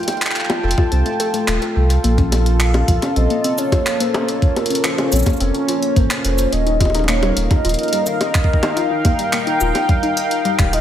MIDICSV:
0, 0, Header, 1, 6, 480
1, 0, Start_track
1, 0, Tempo, 560748
1, 1746, Time_signature, 4, 2, 24, 8
1, 9252, End_track
2, 0, Start_track
2, 0, Title_t, "Soft synth lead"
2, 0, Program_c, 0, 80
2, 2228, Note_on_c, 0, 77, 97
2, 2708, Note_on_c, 0, 75, 97
2, 2721, Note_off_c, 0, 77, 0
2, 3069, Note_on_c, 0, 73, 99
2, 3082, Note_off_c, 0, 75, 0
2, 3428, Note_on_c, 0, 72, 90
2, 3441, Note_off_c, 0, 73, 0
2, 3667, Note_on_c, 0, 73, 100
2, 3680, Note_off_c, 0, 72, 0
2, 3907, Note_on_c, 0, 70, 90
2, 3920, Note_off_c, 0, 73, 0
2, 4148, Note_on_c, 0, 72, 95
2, 4160, Note_off_c, 0, 70, 0
2, 4387, Note_on_c, 0, 73, 102
2, 4400, Note_off_c, 0, 72, 0
2, 5106, Note_on_c, 0, 72, 98
2, 5119, Note_off_c, 0, 73, 0
2, 5581, Note_off_c, 0, 72, 0
2, 5586, Note_on_c, 0, 75, 105
2, 6032, Note_off_c, 0, 75, 0
2, 6066, Note_on_c, 0, 73, 96
2, 6426, Note_on_c, 0, 75, 101
2, 6439, Note_off_c, 0, 73, 0
2, 6900, Note_off_c, 0, 75, 0
2, 6905, Note_on_c, 0, 77, 100
2, 7027, Note_on_c, 0, 75, 99
2, 7040, Note_off_c, 0, 77, 0
2, 7502, Note_off_c, 0, 75, 0
2, 7507, Note_on_c, 0, 77, 112
2, 7988, Note_on_c, 0, 79, 105
2, 8001, Note_off_c, 0, 77, 0
2, 8343, Note_off_c, 0, 79, 0
2, 8348, Note_on_c, 0, 79, 98
2, 8469, Note_on_c, 0, 77, 119
2, 8481, Note_off_c, 0, 79, 0
2, 9188, Note_on_c, 0, 75, 100
2, 9201, Note_off_c, 0, 77, 0
2, 9252, Note_off_c, 0, 75, 0
2, 9252, End_track
3, 0, Start_track
3, 0, Title_t, "Analog synth pad"
3, 0, Program_c, 1, 89
3, 0, Note_on_c, 1, 63, 93
3, 0, Note_on_c, 1, 65, 75
3, 0, Note_on_c, 1, 69, 92
3, 0, Note_on_c, 1, 77, 88
3, 0, Note_on_c, 1, 79, 93
3, 253, Note_on_c, 1, 81, 77
3, 593, Note_off_c, 1, 63, 0
3, 593, Note_off_c, 1, 77, 0
3, 1746, Note_off_c, 1, 81, 0
3, 1748, Note_on_c, 1, 58, 87
3, 2456, Note_off_c, 1, 79, 0
3, 3310, Note_on_c, 1, 61, 82
3, 5585, Note_on_c, 1, 63, 72
3, 5707, Note_on_c, 1, 77, 91
3, 5726, Note_on_c, 1, 70, 74
3, 6981, Note_off_c, 1, 69, 0
3, 7033, Note_off_c, 1, 65, 0
3, 7121, Note_off_c, 1, 61, 0
3, 7122, Note_off_c, 1, 58, 0
3, 7153, Note_on_c, 1, 79, 80
3, 9252, Note_off_c, 1, 63, 0
3, 9252, Note_off_c, 1, 70, 0
3, 9252, Note_off_c, 1, 77, 0
3, 9252, Note_off_c, 1, 79, 0
3, 9252, End_track
4, 0, Start_track
4, 0, Title_t, "Synth pluck"
4, 0, Program_c, 2, 84
4, 425, Note_on_c, 2, 65, 75
4, 515, Note_off_c, 2, 65, 0
4, 546, Note_on_c, 2, 69, 77
4, 660, Note_off_c, 2, 69, 0
4, 665, Note_on_c, 2, 65, 98
4, 755, Note_off_c, 2, 65, 0
4, 784, Note_on_c, 2, 60, 82
4, 839, Note_off_c, 2, 60, 0
4, 905, Note_on_c, 2, 57, 82
4, 1020, Note_off_c, 2, 57, 0
4, 1025, Note_on_c, 2, 69, 102
4, 1079, Note_off_c, 2, 69, 0
4, 1145, Note_on_c, 2, 57, 104
4, 1199, Note_off_c, 2, 57, 0
4, 1266, Note_on_c, 2, 57, 99
4, 1355, Note_off_c, 2, 57, 0
4, 1386, Note_on_c, 2, 69, 74
4, 1475, Note_off_c, 2, 69, 0
4, 1506, Note_on_c, 2, 69, 77
4, 1620, Note_off_c, 2, 69, 0
4, 1746, Note_on_c, 2, 58, 79
4, 1799, Note_off_c, 2, 58, 0
4, 1866, Note_on_c, 2, 61, 75
4, 1955, Note_off_c, 2, 61, 0
4, 2346, Note_on_c, 2, 61, 74
4, 2435, Note_off_c, 2, 61, 0
4, 2466, Note_on_c, 2, 65, 80
4, 2580, Note_off_c, 2, 65, 0
4, 2586, Note_on_c, 2, 61, 101
4, 2675, Note_off_c, 2, 61, 0
4, 2707, Note_on_c, 2, 60, 86
4, 2760, Note_off_c, 2, 60, 0
4, 2827, Note_on_c, 2, 58, 76
4, 2941, Note_off_c, 2, 58, 0
4, 2948, Note_on_c, 2, 60, 82
4, 3036, Note_off_c, 2, 60, 0
4, 3067, Note_on_c, 2, 61, 82
4, 3180, Note_off_c, 2, 61, 0
4, 3187, Note_on_c, 2, 65, 80
4, 3300, Note_off_c, 2, 65, 0
4, 3426, Note_on_c, 2, 58, 77
4, 3480, Note_off_c, 2, 58, 0
4, 3547, Note_on_c, 2, 61, 77
4, 3635, Note_off_c, 2, 61, 0
4, 4026, Note_on_c, 2, 61, 78
4, 4115, Note_off_c, 2, 61, 0
4, 4145, Note_on_c, 2, 65, 90
4, 4260, Note_off_c, 2, 65, 0
4, 4267, Note_on_c, 2, 61, 99
4, 4356, Note_off_c, 2, 61, 0
4, 4387, Note_on_c, 2, 60, 75
4, 4440, Note_off_c, 2, 60, 0
4, 4507, Note_on_c, 2, 58, 75
4, 4620, Note_off_c, 2, 58, 0
4, 4626, Note_on_c, 2, 60, 89
4, 4715, Note_off_c, 2, 60, 0
4, 4745, Note_on_c, 2, 61, 79
4, 4860, Note_off_c, 2, 61, 0
4, 4865, Note_on_c, 2, 65, 83
4, 4980, Note_off_c, 2, 65, 0
4, 5106, Note_on_c, 2, 58, 83
4, 5159, Note_off_c, 2, 58, 0
4, 5226, Note_on_c, 2, 61, 76
4, 5315, Note_off_c, 2, 61, 0
4, 5706, Note_on_c, 2, 63, 74
4, 5795, Note_off_c, 2, 63, 0
4, 5825, Note_on_c, 2, 65, 76
4, 5939, Note_off_c, 2, 65, 0
4, 5947, Note_on_c, 2, 63, 102
4, 6035, Note_off_c, 2, 63, 0
4, 6066, Note_on_c, 2, 58, 89
4, 6120, Note_off_c, 2, 58, 0
4, 6186, Note_on_c, 2, 55, 75
4, 6300, Note_off_c, 2, 55, 0
4, 6306, Note_on_c, 2, 58, 83
4, 6395, Note_off_c, 2, 58, 0
4, 6426, Note_on_c, 2, 63, 76
4, 6540, Note_off_c, 2, 63, 0
4, 6546, Note_on_c, 2, 65, 85
4, 6660, Note_off_c, 2, 65, 0
4, 6785, Note_on_c, 2, 55, 81
4, 6839, Note_off_c, 2, 55, 0
4, 6906, Note_on_c, 2, 63, 78
4, 6995, Note_off_c, 2, 63, 0
4, 7386, Note_on_c, 2, 63, 80
4, 7475, Note_off_c, 2, 63, 0
4, 7506, Note_on_c, 2, 65, 83
4, 7620, Note_off_c, 2, 65, 0
4, 7626, Note_on_c, 2, 63, 101
4, 7715, Note_off_c, 2, 63, 0
4, 7746, Note_on_c, 2, 58, 76
4, 7800, Note_off_c, 2, 58, 0
4, 7867, Note_on_c, 2, 55, 79
4, 7980, Note_off_c, 2, 55, 0
4, 7987, Note_on_c, 2, 58, 88
4, 8076, Note_off_c, 2, 58, 0
4, 8106, Note_on_c, 2, 63, 76
4, 8220, Note_off_c, 2, 63, 0
4, 8227, Note_on_c, 2, 65, 79
4, 8340, Note_off_c, 2, 65, 0
4, 8466, Note_on_c, 2, 55, 85
4, 8519, Note_off_c, 2, 55, 0
4, 8586, Note_on_c, 2, 63, 80
4, 8675, Note_off_c, 2, 63, 0
4, 8946, Note_on_c, 2, 55, 101
4, 9035, Note_off_c, 2, 55, 0
4, 9066, Note_on_c, 2, 55, 101
4, 9119, Note_off_c, 2, 55, 0
4, 9184, Note_on_c, 2, 65, 79
4, 9252, Note_off_c, 2, 65, 0
4, 9252, End_track
5, 0, Start_track
5, 0, Title_t, "Sub bass"
5, 0, Program_c, 3, 38
5, 545, Note_on_c, 3, 29, 80
5, 639, Note_off_c, 3, 29, 0
5, 786, Note_on_c, 3, 36, 83
5, 880, Note_off_c, 3, 36, 0
5, 1265, Note_on_c, 3, 27, 88
5, 1359, Note_off_c, 3, 27, 0
5, 1507, Note_on_c, 3, 36, 86
5, 1694, Note_off_c, 3, 36, 0
5, 1746, Note_on_c, 3, 34, 93
5, 2424, Note_off_c, 3, 34, 0
5, 2467, Note_on_c, 3, 34, 81
5, 2560, Note_off_c, 3, 34, 0
5, 2707, Note_on_c, 3, 34, 102
5, 2800, Note_off_c, 3, 34, 0
5, 4386, Note_on_c, 3, 34, 81
5, 4480, Note_off_c, 3, 34, 0
5, 4626, Note_on_c, 3, 29, 88
5, 4719, Note_off_c, 3, 29, 0
5, 5105, Note_on_c, 3, 32, 89
5, 5199, Note_off_c, 3, 32, 0
5, 5346, Note_on_c, 3, 29, 87
5, 5533, Note_off_c, 3, 29, 0
5, 5586, Note_on_c, 3, 27, 97
5, 6264, Note_off_c, 3, 27, 0
5, 6306, Note_on_c, 3, 27, 84
5, 6400, Note_off_c, 3, 27, 0
5, 6546, Note_on_c, 3, 27, 103
5, 6640, Note_off_c, 3, 27, 0
5, 8226, Note_on_c, 3, 27, 83
5, 8320, Note_off_c, 3, 27, 0
5, 9066, Note_on_c, 3, 27, 88
5, 9252, Note_off_c, 3, 27, 0
5, 9252, End_track
6, 0, Start_track
6, 0, Title_t, "Drums"
6, 26, Note_on_c, 9, 42, 17
6, 66, Note_off_c, 9, 42, 0
6, 66, Note_on_c, 9, 42, 96
6, 66, Note_on_c, 9, 60, 39
6, 146, Note_off_c, 9, 42, 0
6, 146, Note_on_c, 9, 42, 9
6, 152, Note_off_c, 9, 60, 0
6, 186, Note_off_c, 9, 42, 0
6, 186, Note_on_c, 9, 39, 106
6, 186, Note_on_c, 9, 42, 51
6, 226, Note_off_c, 9, 39, 0
6, 226, Note_on_c, 9, 39, 92
6, 266, Note_off_c, 9, 39, 0
6, 266, Note_on_c, 9, 39, 75
6, 272, Note_off_c, 9, 42, 0
6, 306, Note_off_c, 9, 39, 0
6, 306, Note_on_c, 9, 39, 58
6, 306, Note_on_c, 9, 42, 50
6, 346, Note_off_c, 9, 39, 0
6, 346, Note_on_c, 9, 39, 46
6, 385, Note_off_c, 9, 39, 0
6, 385, Note_on_c, 9, 39, 41
6, 391, Note_off_c, 9, 42, 0
6, 425, Note_on_c, 9, 42, 26
6, 425, Note_on_c, 9, 60, 55
6, 471, Note_off_c, 9, 39, 0
6, 511, Note_off_c, 9, 42, 0
6, 511, Note_off_c, 9, 60, 0
6, 606, Note_on_c, 9, 42, 92
6, 666, Note_on_c, 9, 36, 114
6, 666, Note_on_c, 9, 60, 40
6, 691, Note_off_c, 9, 42, 0
6, 751, Note_off_c, 9, 36, 0
6, 751, Note_off_c, 9, 60, 0
6, 786, Note_on_c, 9, 42, 56
6, 871, Note_off_c, 9, 42, 0
6, 906, Note_on_c, 9, 42, 26
6, 991, Note_off_c, 9, 42, 0
6, 1026, Note_on_c, 9, 42, 90
6, 1112, Note_off_c, 9, 42, 0
6, 1146, Note_on_c, 9, 42, 55
6, 1232, Note_off_c, 9, 42, 0
6, 1266, Note_on_c, 9, 39, 107
6, 1266, Note_on_c, 9, 42, 51
6, 1352, Note_off_c, 9, 39, 0
6, 1352, Note_off_c, 9, 42, 0
6, 1387, Note_on_c, 9, 42, 28
6, 1472, Note_off_c, 9, 42, 0
6, 1627, Note_on_c, 9, 42, 56
6, 1713, Note_off_c, 9, 42, 0
6, 1747, Note_on_c, 9, 42, 52
6, 1833, Note_off_c, 9, 42, 0
6, 1866, Note_on_c, 9, 36, 107
6, 1867, Note_on_c, 9, 42, 28
6, 1952, Note_off_c, 9, 36, 0
6, 1953, Note_off_c, 9, 42, 0
6, 1988, Note_on_c, 9, 42, 101
6, 1988, Note_on_c, 9, 60, 41
6, 2073, Note_off_c, 9, 42, 0
6, 2073, Note_off_c, 9, 60, 0
6, 2107, Note_on_c, 9, 42, 55
6, 2193, Note_off_c, 9, 42, 0
6, 2228, Note_on_c, 9, 39, 119
6, 2228, Note_on_c, 9, 42, 54
6, 2313, Note_off_c, 9, 39, 0
6, 2313, Note_off_c, 9, 42, 0
6, 2347, Note_on_c, 9, 42, 26
6, 2347, Note_on_c, 9, 60, 54
6, 2433, Note_off_c, 9, 42, 0
6, 2433, Note_off_c, 9, 60, 0
6, 2466, Note_on_c, 9, 36, 117
6, 2467, Note_on_c, 9, 42, 100
6, 2552, Note_off_c, 9, 36, 0
6, 2553, Note_off_c, 9, 42, 0
6, 2588, Note_on_c, 9, 42, 59
6, 2588, Note_on_c, 9, 60, 40
6, 2674, Note_off_c, 9, 42, 0
6, 2674, Note_off_c, 9, 60, 0
6, 2708, Note_on_c, 9, 42, 56
6, 2793, Note_off_c, 9, 42, 0
6, 2827, Note_on_c, 9, 42, 26
6, 2913, Note_off_c, 9, 42, 0
6, 2948, Note_on_c, 9, 42, 93
6, 3033, Note_off_c, 9, 42, 0
6, 3067, Note_on_c, 9, 42, 54
6, 3067, Note_on_c, 9, 69, 65
6, 3153, Note_off_c, 9, 42, 0
6, 3153, Note_off_c, 9, 69, 0
6, 3186, Note_on_c, 9, 36, 105
6, 3187, Note_on_c, 9, 42, 55
6, 3187, Note_on_c, 9, 60, 55
6, 3272, Note_off_c, 9, 36, 0
6, 3273, Note_off_c, 9, 42, 0
6, 3273, Note_off_c, 9, 60, 0
6, 3307, Note_on_c, 9, 39, 120
6, 3307, Note_on_c, 9, 42, 28
6, 3393, Note_off_c, 9, 39, 0
6, 3393, Note_off_c, 9, 42, 0
6, 3428, Note_on_c, 9, 42, 98
6, 3513, Note_off_c, 9, 42, 0
6, 3547, Note_on_c, 9, 42, 54
6, 3547, Note_on_c, 9, 60, 84
6, 3633, Note_off_c, 9, 42, 0
6, 3633, Note_off_c, 9, 60, 0
6, 3668, Note_on_c, 9, 42, 57
6, 3753, Note_off_c, 9, 42, 0
6, 3786, Note_on_c, 9, 36, 127
6, 3787, Note_on_c, 9, 42, 28
6, 3871, Note_off_c, 9, 36, 0
6, 3873, Note_off_c, 9, 42, 0
6, 3907, Note_on_c, 9, 42, 43
6, 3907, Note_on_c, 9, 60, 38
6, 3987, Note_off_c, 9, 42, 0
6, 3987, Note_on_c, 9, 42, 61
6, 3993, Note_off_c, 9, 60, 0
6, 4027, Note_off_c, 9, 42, 0
6, 4027, Note_on_c, 9, 42, 54
6, 4066, Note_off_c, 9, 42, 0
6, 4066, Note_on_c, 9, 42, 76
6, 4147, Note_off_c, 9, 42, 0
6, 4147, Note_on_c, 9, 39, 124
6, 4147, Note_on_c, 9, 42, 54
6, 4232, Note_off_c, 9, 39, 0
6, 4232, Note_off_c, 9, 42, 0
6, 4266, Note_on_c, 9, 42, 27
6, 4266, Note_on_c, 9, 60, 51
6, 4352, Note_off_c, 9, 42, 0
6, 4352, Note_off_c, 9, 60, 0
6, 4387, Note_on_c, 9, 42, 96
6, 4387, Note_on_c, 9, 69, 73
6, 4417, Note_off_c, 9, 69, 0
6, 4417, Note_on_c, 9, 69, 59
6, 4446, Note_off_c, 9, 69, 0
6, 4446, Note_on_c, 9, 69, 49
6, 4472, Note_off_c, 9, 42, 0
6, 4476, Note_off_c, 9, 69, 0
6, 4476, Note_on_c, 9, 69, 38
6, 4505, Note_on_c, 9, 36, 114
6, 4506, Note_off_c, 9, 69, 0
6, 4506, Note_on_c, 9, 42, 58
6, 4506, Note_on_c, 9, 60, 38
6, 4506, Note_on_c, 9, 69, 34
6, 4536, Note_off_c, 9, 69, 0
6, 4536, Note_on_c, 9, 69, 28
6, 4566, Note_off_c, 9, 69, 0
6, 4566, Note_on_c, 9, 69, 24
6, 4591, Note_off_c, 9, 36, 0
6, 4592, Note_off_c, 9, 42, 0
6, 4592, Note_off_c, 9, 60, 0
6, 4596, Note_off_c, 9, 69, 0
6, 4596, Note_on_c, 9, 69, 19
6, 4626, Note_on_c, 9, 42, 56
6, 4682, Note_off_c, 9, 69, 0
6, 4712, Note_off_c, 9, 42, 0
6, 4747, Note_on_c, 9, 42, 29
6, 4832, Note_off_c, 9, 42, 0
6, 4866, Note_on_c, 9, 42, 96
6, 4952, Note_off_c, 9, 42, 0
6, 4986, Note_on_c, 9, 42, 59
6, 5072, Note_off_c, 9, 42, 0
6, 5105, Note_on_c, 9, 36, 127
6, 5106, Note_on_c, 9, 42, 55
6, 5191, Note_off_c, 9, 36, 0
6, 5192, Note_off_c, 9, 42, 0
6, 5226, Note_on_c, 9, 39, 127
6, 5226, Note_on_c, 9, 42, 29
6, 5312, Note_off_c, 9, 39, 0
6, 5312, Note_off_c, 9, 42, 0
6, 5346, Note_on_c, 9, 42, 94
6, 5432, Note_off_c, 9, 42, 0
6, 5466, Note_on_c, 9, 42, 58
6, 5466, Note_on_c, 9, 69, 62
6, 5552, Note_off_c, 9, 42, 0
6, 5552, Note_off_c, 9, 69, 0
6, 5586, Note_on_c, 9, 42, 52
6, 5671, Note_off_c, 9, 42, 0
6, 5706, Note_on_c, 9, 42, 27
6, 5792, Note_off_c, 9, 42, 0
6, 5825, Note_on_c, 9, 42, 97
6, 5825, Note_on_c, 9, 60, 35
6, 5826, Note_on_c, 9, 36, 113
6, 5865, Note_off_c, 9, 60, 0
6, 5865, Note_on_c, 9, 60, 29
6, 5905, Note_off_c, 9, 60, 0
6, 5905, Note_on_c, 9, 60, 25
6, 5911, Note_off_c, 9, 36, 0
6, 5911, Note_off_c, 9, 42, 0
6, 5946, Note_off_c, 9, 60, 0
6, 5946, Note_on_c, 9, 42, 55
6, 5946, Note_on_c, 9, 60, 20
6, 5986, Note_off_c, 9, 60, 0
6, 5986, Note_on_c, 9, 60, 16
6, 6026, Note_off_c, 9, 60, 0
6, 6026, Note_on_c, 9, 60, 13
6, 6031, Note_off_c, 9, 42, 0
6, 6066, Note_on_c, 9, 39, 127
6, 6066, Note_on_c, 9, 42, 53
6, 6112, Note_off_c, 9, 60, 0
6, 6151, Note_off_c, 9, 39, 0
6, 6151, Note_off_c, 9, 42, 0
6, 6186, Note_on_c, 9, 42, 27
6, 6186, Note_on_c, 9, 60, 51
6, 6272, Note_off_c, 9, 42, 0
6, 6272, Note_off_c, 9, 60, 0
6, 6306, Note_on_c, 9, 42, 96
6, 6391, Note_off_c, 9, 42, 0
6, 6426, Note_on_c, 9, 36, 125
6, 6427, Note_on_c, 9, 42, 57
6, 6427, Note_on_c, 9, 60, 37
6, 6512, Note_off_c, 9, 36, 0
6, 6512, Note_off_c, 9, 42, 0
6, 6512, Note_off_c, 9, 60, 0
6, 6546, Note_on_c, 9, 42, 52
6, 6586, Note_off_c, 9, 42, 0
6, 6586, Note_on_c, 9, 42, 45
6, 6626, Note_off_c, 9, 42, 0
6, 6626, Note_on_c, 9, 42, 36
6, 6666, Note_off_c, 9, 42, 0
6, 6666, Note_on_c, 9, 42, 27
6, 6705, Note_off_c, 9, 42, 0
6, 6705, Note_on_c, 9, 42, 23
6, 6746, Note_off_c, 9, 42, 0
6, 6746, Note_on_c, 9, 42, 19
6, 6785, Note_off_c, 9, 42, 0
6, 6785, Note_on_c, 9, 42, 98
6, 6871, Note_off_c, 9, 42, 0
6, 6906, Note_on_c, 9, 42, 55
6, 6906, Note_on_c, 9, 69, 61
6, 6991, Note_off_c, 9, 42, 0
6, 6991, Note_off_c, 9, 69, 0
6, 7025, Note_on_c, 9, 42, 54
6, 7025, Note_on_c, 9, 60, 49
6, 7111, Note_off_c, 9, 42, 0
6, 7111, Note_off_c, 9, 60, 0
6, 7145, Note_on_c, 9, 39, 122
6, 7146, Note_on_c, 9, 36, 110
6, 7226, Note_off_c, 9, 36, 0
6, 7226, Note_on_c, 9, 36, 89
6, 7230, Note_off_c, 9, 39, 0
6, 7306, Note_off_c, 9, 36, 0
6, 7306, Note_on_c, 9, 36, 70
6, 7386, Note_on_c, 9, 42, 58
6, 7386, Note_on_c, 9, 60, 82
6, 7391, Note_off_c, 9, 36, 0
6, 7471, Note_off_c, 9, 42, 0
6, 7471, Note_off_c, 9, 60, 0
6, 7505, Note_on_c, 9, 42, 52
6, 7591, Note_off_c, 9, 42, 0
6, 7745, Note_on_c, 9, 42, 91
6, 7745, Note_on_c, 9, 60, 38
6, 7746, Note_on_c, 9, 36, 127
6, 7831, Note_off_c, 9, 42, 0
6, 7831, Note_off_c, 9, 60, 0
6, 7832, Note_off_c, 9, 36, 0
6, 7866, Note_on_c, 9, 42, 54
6, 7952, Note_off_c, 9, 42, 0
6, 7986, Note_on_c, 9, 39, 123
6, 7986, Note_on_c, 9, 42, 53
6, 8072, Note_off_c, 9, 39, 0
6, 8072, Note_off_c, 9, 42, 0
6, 8106, Note_on_c, 9, 42, 27
6, 8192, Note_off_c, 9, 42, 0
6, 8226, Note_on_c, 9, 69, 78
6, 8311, Note_off_c, 9, 69, 0
6, 8346, Note_on_c, 9, 42, 53
6, 8346, Note_on_c, 9, 60, 38
6, 8432, Note_off_c, 9, 42, 0
6, 8432, Note_off_c, 9, 60, 0
6, 8466, Note_on_c, 9, 36, 114
6, 8466, Note_on_c, 9, 42, 50
6, 8552, Note_off_c, 9, 36, 0
6, 8552, Note_off_c, 9, 42, 0
6, 8586, Note_on_c, 9, 42, 27
6, 8672, Note_off_c, 9, 42, 0
6, 8706, Note_on_c, 9, 42, 96
6, 8791, Note_off_c, 9, 42, 0
6, 8826, Note_on_c, 9, 42, 53
6, 8912, Note_off_c, 9, 42, 0
6, 8946, Note_on_c, 9, 42, 52
6, 9032, Note_off_c, 9, 42, 0
6, 9066, Note_on_c, 9, 36, 127
6, 9066, Note_on_c, 9, 39, 124
6, 9066, Note_on_c, 9, 42, 27
6, 9152, Note_off_c, 9, 36, 0
6, 9152, Note_off_c, 9, 39, 0
6, 9152, Note_off_c, 9, 42, 0
6, 9186, Note_on_c, 9, 42, 93
6, 9252, Note_off_c, 9, 42, 0
6, 9252, End_track
0, 0, End_of_file